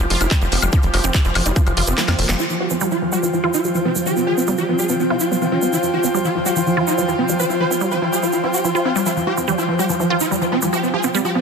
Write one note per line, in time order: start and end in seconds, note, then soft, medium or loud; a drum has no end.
0.00 2.38 F3 medium
0.00 2.38 F4 medium
0.00 2.42 G4 medium
0.00 2.39 C5 medium
0.00 3.64 F5 medium
0.10 0.17 F1 loud
0.10 0.15 F3 medium
0.10 0.16 F4 loud
0.10 open hi-hat loud
0.21 0.27 F1 loud
0.21 0.26 E4 medium
0.21 closed hi-hat medium
0.21 high woodblock soft
0.21 shaker medium
0.31 0.36 F3 medium
0.31 0.37 G3 medium
0.31 kick loud
0.31 clap loud
0.31 closed hi-hat medium
0.31 shaker medium
0.41 0.48 F1 medium
0.41 0.47 F3 medium
0.41 0.50 F3 medium
0.41 closed hi-hat soft
0.41 shaker soft
0.52 0.59 F1 loud
0.52 0.57 F3 medium
0.52 0.57 C4 medium
0.52 open hi-hat loud
0.62 0.69 F1 medium
0.62 0.68 F3 medium
0.62 0.71 G3 medium
0.62 closed hi-hat medium
0.62 high woodblock medium
0.62 shaker medium
0.72 0.81 F3 medium
0.72 0.78 F4 loud
0.72 kick loud
0.72 closed hi-hat medium
0.72 shaker medium
0.83 0.90 F1 medium
0.83 0.88 F3 medium
0.83 closed hi-hat soft
0.83 shaker soft
0.94 1.00 F1 loud
0.94 0.97 F3 medium
0.94 0.99 G4 medium
0.94 open hi-hat loud
0.94 high woodblock soft
1.04 1.11 F1 medium
1.04 1.09 F3 medium
1.04 1.12 C4 medium
1.04 closed hi-hat medium
1.04 shaker medium
1.14 1.20 F3 medium
1.14 1.18 G3 loud
1.14 kick loud
1.14 clap loud
1.14 closed hi-hat medium
1.14 shaker medium
1.25 1.32 F1 medium
1.25 1.33 F3 medium
1.25 1.30 F4 medium
1.25 closed hi-hat soft
1.25 shaker soft
1.35 1.42 F1 loud
1.35 1.41 F3 medium
1.35 1.40 F3 medium
1.35 clap soft
1.35 open hi-hat loud
1.35 high woodblock medium
1.46 1.52 F1 medium
1.46 1.54 G3 medium
1.46 1.51 E4 medium
1.46 closed hi-hat medium
1.46 shaker medium
1.56 1.61 F3 medium
1.56 1.64 F3 medium
1.56 kick loud
1.56 closed hi-hat medium
1.56 shaker medium
1.67 1.73 F1 medium
1.67 1.72 F3 medium
1.67 closed hi-hat soft
1.67 high woodblock soft
1.67 shaker soft
1.77 1.84 F1 loud
1.77 1.82 F3 medium
1.77 1.82 F4 loud
1.77 open hi-hat loud
1.87 1.94 F1 medium
1.87 1.93 C4 loud
1.87 closed hi-hat medium
1.87 shaker medium
1.98 2.03 F3 medium
1.98 2.03 G3 medium
1.98 snare medium
1.98 clap loud
1.98 closed hi-hat medium
1.98 shaker medium
2.08 2.15 F2 medium
2.08 2.13 F3 medium
2.08 2.16 F3 medium
2.08 snare medium
2.08 closed hi-hat soft
2.08 high woodblock medium
2.08 shaker soft
2.19 2.25 F1 loud
2.19 2.24 F3 medium
2.19 2.24 A#3 medium
2.19 open hi-hat loud
2.29 2.36 F1 medium
2.29 2.34 F3 medium
2.29 2.37 G3 medium
2.29 snare medium
2.29 closed hi-hat medium
2.29 shaker medium
2.39 2.48 F3 medium
2.39 11.41 F3 medium
2.39 11.41 F4 medium
2.39 2.45 F4 loud
2.39 shaker medium
2.50 2.55 F3 medium
2.50 shaker soft
2.60 2.64 F3 medium
2.60 2.65 G4 medium
2.60 11.41 G5 medium
2.66 11.41 C5 medium
2.70 2.76 F3 medium
2.70 2.79 C4 medium
2.70 shaker medium
2.81 2.86 F3 medium
2.81 2.84 G3 loud
2.81 shaker medium
2.91 3.00 F3 medium
2.91 2.97 F4 medium
2.91 shaker soft
3.02 3.07 F3 medium
3.12 3.21 G3 medium
3.12 3.18 G4 medium
3.12 shaker medium
3.23 3.31 F3 medium
3.23 3.28 F3 medium
3.23 shaker medium
3.33 3.39 F3 medium
3.33 3.38 F3 medium
3.33 shaker soft
3.44 3.49 F3 medium
3.44 3.49 F4 loud
3.54 3.59 E4 medium
3.54 shaker medium
3.64 3.70 F3 medium
3.64 3.70 G3 medium
3.64 shaker medium
3.75 3.83 F3 medium
3.75 3.80 F3 medium
3.75 shaker soft
3.85 3.91 F3 medium
3.85 3.90 C4 medium
3.96 4.01 F3 medium
3.96 4.04 G3 medium
3.96 shaker medium
4.06 4.14 F3 medium
4.06 4.11 G4 loud
4.06 shaker medium
4.16 4.22 C4 medium
4.16 shaker soft
4.27 4.30 F3 medium
4.27 4.32 G#4 loud
4.37 4.46 C4 medium
4.37 4.43 C4 medium
4.37 shaker medium
4.47 4.51 G3 loud
4.47 4.53 C4 medium
4.47 shaker medium
4.57 4.66 F3 medium
4.57 4.63 G4 medium
4.57 shaker soft
4.69 4.74 F3 medium
4.69 4.74 C4 medium
4.79 4.87 G3 medium
4.79 4.84 G#4 medium
4.79 shaker medium
4.89 4.98 F3 medium
4.89 4.95 C4 medium
4.89 shaker medium
5.00 5.05 F3 medium
5.00 5.05 C4 medium
5.00 shaker soft
5.10 5.15 C4 medium
5.10 5.16 F4 loud
5.20 5.26 F4 medium
5.20 shaker medium
5.31 5.37 G3 medium
5.31 5.36 C4 medium
5.31 shaker medium
5.42 5.50 F3 medium
5.42 5.47 C4 medium
5.42 shaker soft
5.52 5.57 F3 medium
5.52 5.57 C#4 medium
5.62 5.71 G3 medium
5.62 5.68 C4 medium
5.62 shaker medium
5.73 5.81 F3 medium
5.73 5.78 F4 medium
5.73 shaker medium
5.83 5.88 F3 medium
5.83 shaker soft
5.94 5.97 F3 medium
5.94 5.99 G4 medium
6.04 6.09 F3 medium
6.04 6.12 C4 medium
6.04 shaker medium
6.14 6.20 F3 medium
6.14 6.18 G3 loud
6.14 shaker medium
6.24 6.33 F3 medium
6.24 6.30 F4 medium
6.24 shaker soft
6.35 6.41 F3 medium
6.35 6.40 F3 medium
6.46 6.54 G3 medium
6.46 6.51 G4 medium
6.46 shaker medium
6.56 6.61 F3 medium
6.56 6.64 F3 medium
6.56 shaker medium
6.67 6.72 F3 medium
6.67 shaker soft
6.77 6.82 F3 medium
6.77 6.82 F4 loud
6.87 6.93 E4 medium
6.87 shaker medium
6.98 7.03 F3 medium
6.98 7.03 G3 medium
6.98 shaker medium
7.08 7.13 F3 medium
7.08 7.16 F3 medium
7.08 shaker soft
7.19 7.24 F3 medium
7.19 7.24 C4 medium
7.29 7.34 F3 medium
7.29 7.37 G3 medium
7.29 shaker medium
7.39 7.48 F3 medium
7.39 7.45 C5 loud
7.39 shaker medium
7.50 7.55 F4 medium
7.50 shaker soft
7.60 7.64 F3 medium
7.60 7.65 C5 medium
7.71 7.79 C4 medium
7.71 7.76 F4 medium
7.71 shaker medium
7.81 7.84 G3 loud
7.81 7.86 F4 medium
7.81 shaker medium
7.91 8.00 F3 medium
7.91 7.97 C5 medium
7.91 shaker soft
8.02 8.07 F3 medium
8.02 8.07 F4 medium
8.12 8.21 G3 medium
8.12 8.18 G#4 medium
8.12 shaker medium
8.23 8.31 F3 medium
8.23 8.28 F4 medium
8.23 shaker medium
8.33 8.39 F3 medium
8.33 8.38 F4 medium
8.33 shaker soft
8.44 8.49 C4 medium
8.44 8.49 F4 medium
8.54 8.59 G4 medium
8.54 shaker medium
8.64 8.70 F3 medium
8.64 8.70 F4 medium
8.64 shaker medium
8.75 8.80 F4 medium
8.75 shaker soft
8.85 8.91 C4 medium
8.85 8.90 F4 medium
8.96 8.99 G3 loud
8.96 9.01 F4 medium
8.96 shaker medium
9.06 9.14 F3 medium
9.06 9.11 F4 medium
9.06 shaker medium
9.17 9.22 F3 medium
9.17 shaker soft
9.27 9.30 F3 medium
9.27 9.32 G4 medium
9.37 9.43 F3 medium
9.37 9.46 C4 medium
9.37 shaker medium
9.48 9.53 F3 medium
9.48 9.51 G3 loud
9.48 shaker medium
9.58 9.66 F3 medium
9.58 9.63 F4 medium
9.58 shaker soft
9.69 9.74 F3 medium
9.79 9.87 G3 medium
9.79 9.84 G4 medium
9.79 shaker medium
9.89 9.98 F3 medium
9.89 9.95 F3 medium
9.89 shaker medium
10.00 10.05 F3 medium
10.00 shaker soft
10.10 10.15 F3 medium
10.10 10.16 F4 loud
10.20 10.26 E4 medium
10.20 shaker medium
10.31 10.36 F3 medium
10.31 10.37 G3 medium
10.31 shaker medium
10.42 10.50 F3 medium
10.42 10.47 F3 medium
10.42 shaker soft
10.52 10.57 F3 medium
10.52 10.57 C4 medium
10.62 10.68 F3 medium
10.62 10.71 G3 medium
10.62 shaker medium
10.73 10.81 F3 medium
10.73 10.78 G4 loud
10.73 shaker medium
10.83 10.88 C4 medium
10.83 shaker soft
10.94 10.97 F3 medium
10.94 10.99 G#4 medium
11.03 11.09 C4 medium
11.03 11.12 C4 medium
11.03 shaker medium
11.15 11.18 G3 loud
11.15 11.20 C4 medium
11.15 shaker medium
11.25 11.33 F3 medium
11.25 11.30 G4 medium
11.25 shaker soft
11.35 11.41 F3 medium
11.35 11.40 C4 medium